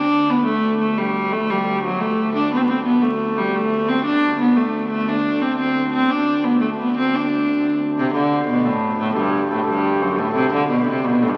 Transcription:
Already playing: D2 D4
0.30 B3
0.45 A3
0.81 A3
0.98 G3
1.32 A3
1.50 G3
1.84 F#3
2.00 A3
2.36 D4
2.53 B3 C4
2.61 B3
2.70 C4
2.85 B3
3.02 A3
3.38 G3
3.54 A3
3.88 C4
4.05 D2 D4
4.40 B3
4.56 A3
4.91 A3
5.09 D4
5.41 C4
5.58 C4
5.93 C4
6.10 D4
6.44 B3
6.61 A3
6.79 B3
6.98 C4
7.15 D4
7.98 C3 C5
8.14 D2 D3 D5
8.32 C5
8.48 B2 B4
8.65 A2 A4
8.99 A2 A4
9.16 G2 G4
9.33 G4
9.51 A2 A4
9.67 G2 G4
9.85 G4
10.02 F#2 F#4
10.19 A2 A4
10.35 C3 C5
10.53 D3 D5
10.69 B2 B4
10.87 C3 C5
11.05 B2 B4
11.21 A2 A4
11.28 G2
11.34 A4

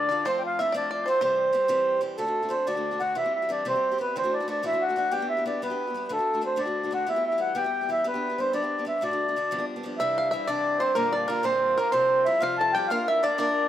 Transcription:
Already playing: D4 A4 D5
0.09 D3 D4 F4 A4 D5
0.24 F3 A3 C4 F4 C5
0.38 G5
0.43 F4 F5
0.59 F3 A3 C4 E4 F4 E5
0.72 F3 A3 C4 D4 F4 D5
0.77 D5
0.91 D5
1.06 F3 A3 C4 F4 C5
1.21 C3 E3 G3 C4 G4 C5
1.53 E3 G3 C4 G4
1.68 C3 E3 G3 C4 G4
2.01 E3 G3 C4 G4
2.18 D2 A2 D3 A3 D4 F#4 A4
2.26 D3 A3 D4 F#4
2.42 D3 A3 D4 F#4
2.49 D3 A3 D4 F#4 C5
2.53 C4
2.67 D2 A2 D3 A3 D4 F#4 D5
2.75 D3 A3 D4 F#4
2.91 D3 A3 D4 F#4
3.00 D3 A3 D4 F#4 F#5
3.15 C3 E3 G3 C4 E4 G4 E5
3.24 G3 C4 G4
3.35 E4 E5
3.42 G3 C4 G4
3.49 E3 G3 C4 D4 G4 D5
3.65 C3 E3 G3 C4 G4 C5
3.75 G3 C4 G4
3.91 G3 C4 G4
3.98 E3 G3 B3 C4 G4 B4
4.14 D2 A2 E3 A3 C4 D4 F#4 C5
4.23 E3 A3 D4 F#4
4.33 D4 D5
4.40 E3 A3 D4 F#4
4.48 E3 A3 D4 F#4 D5
4.62 D2 A2 E3 A3 D4 E4 F#4 E5
4.72 E3 A3 D4 F#4
4.81 F#4 F#5
4.89 E3 A3 D4 F#4
4.96 E3 A3 D4 F#4 F#5
5.11 G3 B3 D4 G4 G5
5.20 B3 D4 G4
5.30 E4 E5
5.37 B3 D4 G4
5.46 G3 B3 D4 G4 D5
5.61 G3 B3 D4 G4 B4
5.70 B3 D4 G4
5.87 B3 D4 G4
5.94 G3 B3 D4 G4
6.09 D2 A2 D3 A3 D4 F#4 A4
6.19 D3 A3 D4 F#4
6.34 D3 A3 D4 F#4
6.41 D3 A3 C4 D4 F#4
6.46 C5
6.56 D2 A2 D3 A3 D4 F#4 D5
6.65 D3 A3 D4 F#4
6.83 D3 A3 D4 F#4
6.91 D3 A3 D4 F#4 F#5
7.06 E3 G3 B3 E4 G4 E5
7.16 G3 B3 G4
7.26 E4 E5
7.32 G3 B3 G4
7.38 E3 G3 B3 G4 F#5
7.55 E3 G3 B3 G4 G5
7.64 G3 B3 G4
7.81 G3 B3 G4
7.88 E3 G3 B3 E4 G4 E5
8.04 G3 B3 D4 G4 B4
8.14 B3 D4 G4
8.29 B3 D4 G4
8.38 G3 B3 C4 D4 G4 C5
8.53 G3 B3 D4 G4 D5
8.62 B3 D4 G4
8.78 B3 D4 G4
8.85 G3 B3 D4 G4 E5
9.01 D2 A2 D3 A3 D4 F#4 D5
9.11 D3 A3 D4 F#4
9.28 D3 A3 D4 F#4
9.36 D3 A3 D4 F#4
9.51 G2 D3 F3 G3 B3 D4
9.58 F3 G3 B3 D4
9.76 F3 G3 B3 D4
9.83 F3 G3 B3 D4
9.98 C3 E3 G3 C4 D4 E4 E5
10.18 F5
10.31 E3 G3 C4 D4 E4 E5
10.47 C3 E3 G3 C4 D4 D5
10.80 E3 G3 C4 D4 C5
10.95 A#2 D3 G3 A#3 F4 A#4
11.13 D4 D5
11.28 D3 G3 A#3 F4 A#4
11.43 A#2 D3 G3 A#3 C4 F4 C5
11.77 D3 G3 A#3 F4 A#4
11.92 C3 F3 G3 C4 F4 C5
12.25 F3 G3 C4 E4 F4 E5
12.40 C3 F3 G3 C4 F4 F5
12.58 A4 A5
12.73 F3 G3 C4 G4 G5
12.77 F4
12.88 A#3 D4 F4 F5
12.92 F4 A#4
13.08 E4 E5
13.22 A#3 D4 F4 A#4 D5
13.38 A#3 D4 F4 A#4 D5

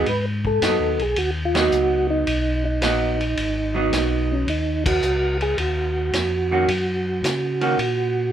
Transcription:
0.06 G#2 B4, ride
0.45 A4, kick
0.61 F#2 F#3 B3 D#4, snare, hi-hat pedal, ride
0.80 D#2
0.99 B1 G#4, ride
1.16 D#2 F#4, ride
1.45 F4
1.54 F#3 B3 D#4 F#4, snare, ride
1.72 C#2, hi-hat pedal
2.10 D#4
2.27 B1, ride
2.65 D#4
2.81 A#1 F#3 B3 D#4, snare, hi-hat pedal, ride
3.21 ride
3.37 G#1, ride
3.74 F#3 B3 D#4
3.92 B1, snare, hi-hat pedal, ride
4.32 C#4
4.47 D#2 D#4, ride
4.86 F#4, kick, crash
5.02 C#2, hi-hat pedal
5.41 G#4, ride
5.57 D#2 F#4, ride
6.13 F2, snare, hi-hat pedal, ride
6.51 D#3 A#3 C#4 F#4
6.68 F#2, ride
7.24 C#3, snare, hi-hat pedal, ride
7.61 D#3 A#3 C#4 F#4, ride
7.78 A#2, ride

